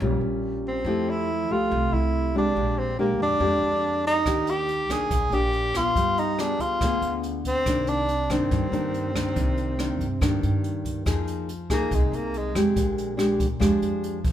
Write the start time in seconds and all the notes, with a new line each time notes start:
Already playing: C#4
0.00 A#1 A#2 G3 C#4 F4
0.21 A#1
0.68 C4
0.84 F2 F3 A3 E4 G4
1.10 E4
1.50 C2 A3 F4 G4
1.71 C2 C3
1.93 C2 E4
2.35 G#3 D4 G4
2.56 A#1 A#2
2.79 C4
2.98 G#3 A#3 D4 G4
3.19 F2 D4
3.40 F2 G#3 D4 G4
3.62 F2
4.07 D#4
4.26 D#2 D#3 A#3 D4 G4, kick, cross-stick, closed hi-hat
4.47 G4, closed hi-hat
4.69 closed hi-hat
4.89 A#1 A#3 D4 G#4, kick, cross-stick, closed hi-hat
5.11 A#1 A#2, kick, closed hi-hat
5.32 A#1 A#3 D4 G4, closed hi-hat
5.53 closed hi-hat
5.74 B3 F4, kick, cross-stick, closed hi-hat
5.95 G2 G3, kick, closed hi-hat
6.18 D#4, closed hi-hat
6.39 B3 D4 F4 G#4, cross-stick, closed hi-hat
6.60 D2 F4, kick, closed hi-hat
6.81 D2 D3 B3 F4 G#4, kick, cross-stick, closed hi-hat
7.01 D2, closed hi-hat
7.23 closed hi-hat
7.45 C4, kick, closed hi-hat
7.66 C2 C3 D#3 A#3 D4, kick, cross-stick, closed hi-hat
7.87 D4, closed hi-hat
8.08 closed hi-hat
8.30 G2 D#3 A#3 C4 D4, kick, cross-stick, closed hi-hat
8.51 G2, kick, closed hi-hat
8.72 G2 D#3 A#3 D4, closed hi-hat
8.94 closed hi-hat
9.15 D#3 A#3 D4, kick, cross-stick, closed hi-hat
9.36 C2 C3, kick, closed hi-hat
9.58 closed hi-hat
9.79 D#3 A#3 D4, cross-stick, closed hi-hat
10.00 G2, kick, closed hi-hat
10.21 G2 D#3 A#3 D4, kick, cross-stick, closed hi-hat
10.43 G2, closed hi-hat
10.64 closed hi-hat
10.85 kick, closed hi-hat
11.06 F2 F3 A#3 D#4 G#4, kick, cross-stick, closed hi-hat
11.27 closed hi-hat
11.49 closed hi-hat
11.70 A#3 D#4 G#4, kick, cross-stick, closed hi-hat
11.91 C2 C3 G#3, kick, closed hi-hat
12.12 C2 A#3, closed hi-hat
12.34 G#3, closed hi-hat
12.55 F2 G#3 D4 G4, cross-stick, closed hi-hat
12.76 A#1 A#2, kick, closed hi-hat
12.98 closed hi-hat
13.17 G#3 D4 G4, cross-stick, closed hi-hat
13.40 kick, closed hi-hat
13.60 F2 F3 G#3 D4 G4, kick, cross-stick, closed hi-hat
13.82 F2, closed hi-hat
14.04 closed hi-hat
14.24 A#1, kick, closed hi-hat